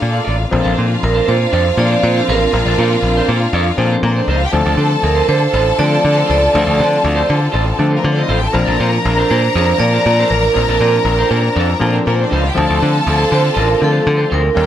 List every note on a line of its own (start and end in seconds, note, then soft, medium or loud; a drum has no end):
0.00 0.19 A#2 medium
0.00 0.38 A#3 medium
0.00 0.48 A#3 medium
0.00 0.49 D4 medium
0.00 0.38 F4 medium
0.00 0.49 F4 medium
0.00 0.38 A4 medium
0.00 0.49 A4 medium
0.00 0.38 D5 medium
0.00 0.49 F5 medium
0.00 muted clean electric guitar stroke soft
0.12 0.23 F4 medium
0.12 0.23 A4 medium
0.12 0.23 D5 medium
0.24 0.44 A1 medium
0.24 0.38 F4 medium
0.24 0.36 A4 medium
0.24 0.35 D5 medium
0.37 muted clean electric guitar stroke soft
0.50 0.61 A#1 loud
0.50 1.39 F3 medium
0.50 1.39 A#3 medium
0.50 4.50 A#3 medium
0.50 4.49 C4 medium
0.50 1.39 C4 medium
0.50 4.50 D4 medium
0.50 1.39 D4 medium
0.50 3.94 F4 medium
0.50 1.39 A4 medium
0.50 3.94 F5 loud
0.50 muted clean electric guitar stroke soft
0.62 0.73 A#1 loud
0.62 0.72 D4 medium
0.62 0.73 A4 medium
0.62 0.75 D5 medium
0.74 0.85 D4 medium
0.74 0.86 A4 medium
0.74 0.85 C5 medium
0.78 0.95 A#2 medium
0.87 muted clean electric guitar stroke soft
1.00 1.20 A#1 loud
1.00 muted clean electric guitar stroke soft
1.04 1.28 A#4 medium
1.14 1.24 D4 medium
1.14 1.25 A4 medium
1.14 1.26 C5 medium
1.25 1.45 A#2 loud
1.25 1.36 D4 medium
1.25 1.37 A4 medium
1.25 1.37 C5 medium
1.25 1.79 C5 loud
1.40 muted clean electric guitar stroke medium
1.51 1.70 F2 loud
1.51 1.65 D4 medium
1.51 1.65 A4 medium
1.51 1.65 D5 loud
1.65 muted clean electric guitar stroke soft
1.77 1.95 A#2 medium
1.77 2.42 F3 medium
1.77 2.42 A#3 medium
1.77 2.43 C4 medium
1.77 2.43 D4 medium
1.77 1.83 G4 medium
1.77 2.04 D5 loud
1.77 muted clean electric guitar stroke medium
1.84 2.46 A4 medium
1.90 2.00 D4 medium
1.90 2.00 A4 medium
1.90 2.00 C5 medium
2.03 2.20 A#2 loud
2.03 2.28 C5 loud
2.03 muted clean electric guitar stroke soft
2.15 2.26 D4 soft
2.15 2.26 A4 medium
2.15 2.25 C5 medium
2.28 2.45 A1 medium
2.28 2.48 D4 loud
2.28 2.39 A4 loud
2.28 3.25 A#4 medium
2.28 2.38 C5 loud
2.39 muted clean electric guitar stroke soft
2.53 2.62 A#1 loud
2.53 3.40 F3 medium
2.53 3.40 A#3 medium
2.53 3.40 C4 medium
2.53 3.40 D4 medium
2.53 3.41 A#4 medium
2.66 2.74 A#1 loud
2.66 2.77 D4 medium
2.66 2.78 A4 medium
2.66 2.78 D5 medium
2.78 2.95 A#2 medium
2.78 2.88 D4 medium
2.78 2.89 A4 medium
2.78 2.89 C5 medium
2.92 muted clean electric guitar stroke medium
3.03 3.20 A#1 loud
3.03 muted clean electric guitar stroke soft
3.17 3.27 D4 medium
3.17 3.28 A4 medium
3.17 3.29 C5 medium
3.29 3.46 A#2 loud
3.29 3.38 D4 medium
3.29 3.39 A4 medium
3.29 3.39 C5 medium
3.41 muted clean electric guitar stroke medium
3.53 3.70 F2 loud
3.53 3.66 D4 medium
3.53 3.66 A4 medium
3.53 3.67 D5 loud
3.67 muted clean electric guitar stroke soft
3.77 3.95 A#2 loud
3.77 4.43 F3 medium
3.77 4.43 A#3 medium
3.77 4.43 C4 medium
3.77 4.43 D4 medium
3.77 3.84 G#4 medium
3.77 muted clean electric guitar stroke soft
3.84 4.46 A4 medium
3.92 4.02 D4 medium
3.92 4.02 A4 medium
3.92 4.01 C5 medium
4.03 4.20 A#2 loud
4.03 4.11 A#3 medium
4.03 4.12 A#4 medium
4.03 muted clean electric guitar stroke medium
4.12 4.20 C4 medium
4.12 4.20 C5 medium
4.16 4.27 D4 medium
4.16 4.27 A4 medium
4.16 4.26 C5 medium
4.20 4.29 D4 medium
4.20 4.28 D5 medium
4.28 4.45 C#2 medium
4.28 4.42 D4 medium
4.28 4.37 D#4 medium
4.28 4.41 A4 medium
4.28 4.40 C5 loud
4.28 4.37 D#5 medium
4.38 4.45 F4 medium
4.38 4.46 F5 medium
4.38 muted clean electric guitar stroke medium
4.46 4.54 G4 medium
4.46 4.54 G5 loud
4.51 4.62 D2 loud
4.51 8.50 D3 medium
4.51 5.40 F3 medium
4.51 5.40 A3 medium
4.51 8.50 C4 medium
4.51 5.40 C4 medium
4.51 5.40 D4 medium
4.51 8.50 F4 medium
4.51 7.87 A4 loud
4.51 5.41 A4 medium
4.51 7.87 A5 loud
4.65 4.74 D2 loud
4.65 4.77 F4 medium
4.65 4.77 A4 medium
4.65 4.78 D5 medium
4.77 4.95 D3 medium
4.77 4.89 F4 medium
4.77 4.89 A4 medium
4.77 4.89 C5 medium
4.91 muted clean electric guitar stroke soft
5.03 5.21 D2 medium
5.03 5.29 A#4 loud
5.03 muted clean electric guitar stroke soft
5.15 5.27 F4 medium
5.15 5.27 A4 medium
5.15 5.28 C5 medium
5.28 5.46 D3 loud
5.28 5.39 F4 medium
5.28 5.39 A4 medium
5.28 5.80 C5 loud
5.28 5.39 C5 medium
5.41 muted clean electric guitar stroke soft
5.53 5.71 A1 loud
5.53 5.66 F4 medium
5.53 5.65 A4 medium
5.53 5.64 D5 loud
5.65 muted clean electric guitar stroke medium
5.77 5.96 D3 loud
5.77 6.44 F3 medium
5.77 6.44 A3 medium
5.77 6.44 C4 medium
5.77 6.44 D4 medium
5.77 6.45 A4 medium
5.77 6.30 D5 loud
5.77 muted clean electric guitar stroke soft
5.90 6.02 F4 medium
5.90 6.01 A4 medium
5.90 6.01 C5 medium
6.03 6.22 D3 loud
6.03 muted clean electric guitar stroke soft
6.15 6.25 F4 medium
6.15 6.26 A4 medium
6.15 6.26 C5 medium
6.26 6.47 C#2 medium
6.26 6.41 F4 medium
6.26 6.40 A4 medium
6.26 6.38 C5 medium
6.31 7.26 D5 loud
6.40 muted clean electric guitar stroke medium
6.52 6.63 D2 loud
6.52 7.41 F3 medium
6.52 7.41 A3 medium
6.52 7.41 C4 medium
6.52 7.42 D4 medium
6.52 7.42 A4 medium
6.52 muted clean electric guitar stroke soft
6.65 6.81 D2 loud
6.65 6.76 F4 medium
6.65 6.76 A4 medium
6.65 6.78 D5 medium
6.77 6.97 D3 medium
6.77 6.88 F4 medium
6.77 6.88 A4 medium
6.77 6.89 C5 medium
6.90 muted clean electric guitar stroke soft
7.02 7.22 D2 loud
7.02 muted clean electric guitar stroke soft
7.15 7.25 F4 medium
7.15 7.25 A4 medium
7.15 7.26 C5 medium
7.26 7.47 D3 loud
7.26 7.38 F4 medium
7.26 7.38 A4 medium
7.26 7.38 C5 medium
7.39 muted clean electric guitar stroke soft
7.52 7.71 A1 loud
7.52 7.66 F4 loud
7.52 7.65 A4 medium
7.52 7.64 D5 loud
7.65 muted clean electric guitar stroke medium
7.78 7.97 D3 medium
7.78 8.44 F3 medium
7.78 8.44 A3 medium
7.78 8.45 C4 medium
7.78 8.45 D4 medium
7.78 8.45 A4 loud
7.78 muted clean electric guitar stroke medium
7.90 8.02 F4 medium
7.90 8.02 A4 medium
7.90 8.01 C5 medium
7.96 8.05 A#3 medium
7.96 8.05 A#4 medium
8.03 8.22 D3 loud
8.03 8.13 C4 medium
8.03 8.13 C5 medium
8.03 muted clean electric guitar stroke soft
8.12 8.21 D4 medium
8.12 8.27 C5 medium
8.12 8.21 D5 medium
8.17 8.27 F4 medium
8.17 8.27 A4 medium
8.17 8.29 D#5 medium
8.21 8.29 D#4 medium
8.29 8.47 A1 loud
8.29 8.42 F4 medium
8.29 8.38 F4 medium
8.29 8.40 A4 loud
8.29 8.39 C5 loud
8.29 8.38 F5 medium
8.38 8.46 G4 medium
8.38 8.46 G5 medium
8.38 muted clean electric guitar stroke soft
8.46 8.54 A4 medium
8.46 8.54 A5 loud
8.53 8.63 A#1 loud
8.53 9.41 F3 medium
8.53 12.51 F3 medium
8.53 9.41 A#3 medium
8.53 10.53 A#3 medium
8.53 9.41 C4 medium
8.53 12.51 D4 loud
8.53 9.42 D4 medium
8.53 9.42 A#4 loud
8.53 11.97 A#4 medium
8.53 11.97 A#5 loud
8.53 muted clean electric guitar stroke soft
8.65 8.76 A#1 loud
8.65 8.78 D4 medium
8.65 8.78 A4 medium
8.65 8.79 D5 medium
8.79 8.97 A#2 medium
8.79 8.90 D4 medium
8.79 8.90 A4 medium
8.79 8.90 C5 medium
8.93 muted clean electric guitar stroke soft
9.05 9.22 A#1 loud
9.05 9.31 A#4 medium
9.05 muted clean electric guitar stroke soft
9.17 9.29 D4 medium
9.17 9.30 A4 medium
9.17 9.30 C5 medium
9.30 9.48 A#2 loud
9.30 9.40 D4 medium
9.30 9.41 A4 medium
9.30 9.77 C5 loud
9.30 9.41 C5 medium
9.55 9.73 F2 loud
9.55 9.75 D4 loud
9.55 9.68 A4 loud
9.55 9.68 D5 loud
9.68 muted clean electric guitar stroke medium
9.78 9.97 A#2 medium
9.78 10.44 F3 medium
9.78 10.44 A#3 medium
9.78 10.45 C4 medium
9.78 10.45 D4 medium
9.78 10.45 A#4 medium
9.78 10.26 D5 loud
9.78 muted clean electric guitar stroke soft
9.92 10.03 D4 soft
9.92 10.03 A4 medium
9.92 10.03 C5 medium
10.06 10.23 A#2 loud
10.06 muted clean electric guitar stroke soft
10.19 10.29 D4 medium
10.19 10.30 A4 medium
10.19 10.30 C5 medium
10.30 10.48 A1 medium
10.30 11.26 A#4 medium
10.30 muted clean electric guitar stroke soft
10.43 muted clean electric guitar stroke soft
10.53 10.64 A#1 loud
10.53 11.41 F3 medium
10.53 11.42 A#3 medium
10.53 11.42 C4 medium
10.53 12.53 C4 medium
10.53 11.42 D4 medium
10.53 11.42 A#4 medium
10.53 muted clean electric guitar stroke soft
10.68 10.77 A#1 medium
10.68 10.79 D4 medium
10.68 10.80 A4 medium
10.68 10.81 D5 medium
10.80 10.98 A#2 loud
10.80 10.91 D4 medium
10.80 10.91 A4 medium
10.80 10.91 C5 medium
10.93 muted clean electric guitar stroke medium
11.05 11.22 A#1 loud
11.19 11.28 D4 medium
11.19 11.30 A4 medium
11.19 11.29 C5 medium
11.30 11.48 A#2 medium
11.30 11.40 D4 medium
11.30 11.41 A4 medium
11.30 11.41 C5 medium
11.43 muted clean electric guitar stroke medium
11.55 11.73 F2 loud
11.55 11.69 D4 loud
11.55 11.68 A4 loud
11.55 11.69 D5 loud
11.69 muted clean electric guitar stroke medium
11.79 11.98 A#2 loud
11.79 12.45 F3 loud
11.79 12.45 A#3 medium
11.79 12.45 C4 medium
11.79 12.46 D4 medium
11.79 12.46 A4 loud
11.79 muted clean electric guitar stroke medium
11.93 12.04 D4 medium
11.93 12.04 A4 medium
11.93 12.03 C5 medium
12.05 12.24 A#2 loud
12.05 12.14 A#3 medium
12.05 12.14 A#4 medium
12.05 muted clean electric guitar stroke medium
12.15 12.23 C4 medium
12.15 12.23 C5 medium
12.15 12.28 C5 medium
12.19 12.29 D4 medium
12.19 12.31 D4 medium
12.19 12.29 A4 medium
12.19 12.31 D5 medium
12.31 12.49 C#2 medium
12.31 12.44 D4 medium
12.31 12.39 D#4 medium
12.31 12.44 A4 medium
12.31 12.43 C5 loud
12.31 12.39 D#5 medium
12.39 12.48 F4 medium
12.39 12.47 F5 medium
12.44 12.56 G5 medium
12.44 muted clean electric guitar stroke medium
12.48 12.56 G4 medium
12.54 12.66 D2 loud
12.54 14.54 D3 loud
12.54 13.42 F3 medium
12.54 13.42 A3 medium
12.54 13.43 C4 medium
12.54 14.54 C4 medium
12.54 13.43 D4 medium
12.54 14.54 F4 loud
12.54 14.28 A4 loud
12.54 13.43 A4 loud
12.54 14.27 A5 loud
12.54 muted clean electric guitar stroke soft
12.67 12.78 D2 loud
12.67 12.78 F4 medium
12.67 12.79 A4 medium
12.67 12.80 D5 medium
12.79 12.99 D3 medium
12.79 12.90 F4 medium
12.79 12.91 A4 medium
12.79 12.91 C5 medium
12.92 muted clean electric guitar stroke soft
13.05 13.24 D2 loud
13.05 muted clean electric guitar stroke soft
13.10 13.31 A4 loud
13.18 13.28 F4 medium
13.18 13.29 A4 medium
13.18 13.29 C5 medium
13.30 13.49 D3 loud
13.30 13.40 F4 medium
13.30 13.41 A4 medium
13.30 13.41 C5 medium
13.35 13.45 C5 loud
13.54 13.74 A1 loud
13.54 13.68 F4 loud
13.54 13.67 A4 loud
13.54 13.67 D5 loud
13.59 13.83 A#4 loud
13.68 muted clean electric guitar stroke soft
13.80 13.99 D3 medium
13.80 14.46 F3 medium
13.80 14.46 A3 medium
13.80 14.46 C4 medium
13.80 14.46 D4 medium
13.80 14.47 A4 medium
13.80 muted clean electric guitar stroke soft
13.84 14.34 A4 loud
13.91 14.03 F4 medium
13.91 14.03 A4 medium
13.91 14.02 C5 medium
14.05 14.24 D3 loud
14.05 muted clean electric guitar stroke soft
14.17 14.28 F4 medium
14.17 14.28 A4 medium
14.17 14.28 C5 medium
14.30 14.49 D2 loud
14.30 14.43 F4 medium
14.30 14.43 A4 medium
14.30 14.42 C5 loud
14.34 14.66 A#4 loud
14.43 muted clean electric guitar stroke soft
14.55 14.65 D#2 loud
14.55 14.66 D#3 medium
14.55 14.66 G3 medium
14.55 14.66 A#3 medium
14.55 14.66 C#4 medium
14.55 14.66 D#4 medium
14.55 14.66 G4 medium
14.55 14.62 A4 medium
14.55 14.66 G5 loud
14.55 muted clean electric guitar stroke soft
14.62 14.66 A#4 medium